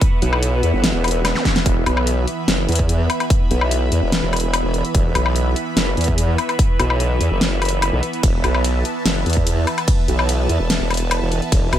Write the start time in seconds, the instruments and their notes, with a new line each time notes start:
Already playing: supersaw synth E3 B3 B4 E5 F#5
0.01 kick, closed hi-hat
0.22 wobble bass B1, closed hi-hat
0.33 low woodblock
0.43 closed hi-hat
0.63 wobble bass E2, closed hi-hat
0.74 wobble bass G1
0.84 snare, closed hi-hat
0.94 wobble bass E1
1.04 closed hi-hat, low woodblock
1.08 closed hi-hat
1.11 closed hi-hat
1.25 snare, closed hi-hat, low woodblock
1.35 snare, zap
1.45 kick, snare, closed hi-hat
1.56 snare, closed hi-hat
1.66 wobble bass E1, supersaw synth B5, kick, closed hi-hat
1.86 wobble bass B1, closed hi-hat, low woodblock
1.97 low woodblock
2.07 closed hi-hat
2.27 closed hi-hat
2.48 wobble bass F#1, snare, closed hi-hat
2.69 wobble bass E2, closed hi-hat
2.72 closed hi-hat
2.75 kick, closed hi-hat
2.89 closed hi-hat
3.10 closed hi-hat, low woodblock
3.20 closed hi-hat, low woodblock
3.30 kick, closed hi-hat
3.51 wobble bass B1, closed hi-hat
3.61 low woodblock
3.71 closed hi-hat
3.92 wobble bass E2, closed hi-hat
4.03 wobble bass E1
4.12 snare, closed hi-hat
4.23 wobble bass E1
4.33 closed hi-hat, low woodblock
4.36 closed hi-hat
4.40 closed hi-hat
4.54 closed hi-hat, low woodblock
4.64 wobble bass E1
4.74 closed hi-hat
4.85 closed hi-hat
4.95 wobble bass E1, kick, closed hi-hat
5.15 wobble bass B1, closed hi-hat, low woodblock
5.26 low woodblock
5.36 closed hi-hat
5.56 closed hi-hat
5.77 wobble bass F#1, snare, closed hi-hat
5.97 wobble bass E2, closed hi-hat
6.01 closed hi-hat
6.04 kick, closed hi-hat
6.18 closed hi-hat
6.38 closed hi-hat, low woodblock
6.49 closed hi-hat, low woodblock
6.59 kick, closed hi-hat
6.79 wobble bass B1, closed hi-hat, low woodblock
6.90 low woodblock
7.00 closed hi-hat
7.21 wobble bass E2, closed hi-hat
7.31 wobble bass F#1
7.41 snare, closed hi-hat
7.62 closed hi-hat, low woodblock
7.65 closed hi-hat
7.69 closed hi-hat
7.82 closed hi-hat, low woodblock
7.93 wobble bass B1
8.03 closed hi-hat
8.13 closed hi-hat
8.23 wobble bass E1, supersaw synth A5, kick, closed hi-hat, ride
8.44 wobble bass B1, closed hi-hat, low woodblock
8.55 low woodblock
8.64 closed hi-hat, ride
8.85 closed hi-hat
9.06 wobble bass F#1, snare, closed hi-hat, ride
9.26 wobble bass E2, closed hi-hat
9.30 closed hi-hat
9.33 kick, closed hi-hat
9.47 closed hi-hat, ride
9.67 closed hi-hat, low woodblock
9.78 closed hi-hat, low woodblock
9.88 kick, closed hi-hat, ride
10.08 wobble bass B1, closed hi-hat
10.19 low woodblock
10.29 closed hi-hat, ride
10.49 wobble bass E2, closed hi-hat
10.60 wobble bass E1
10.70 snare, closed hi-hat, ride
10.81 wobble bass E1
10.90 closed hi-hat, low woodblock
10.94 closed hi-hat
10.97 closed hi-hat
11.11 closed hi-hat, ride, low woodblock
11.22 wobble bass E1
11.32 closed hi-hat
11.42 closed hi-hat
11.52 wobble bass E1, kick, closed hi-hat, ride
11.73 wobble bass B1, closed hi-hat, low woodblock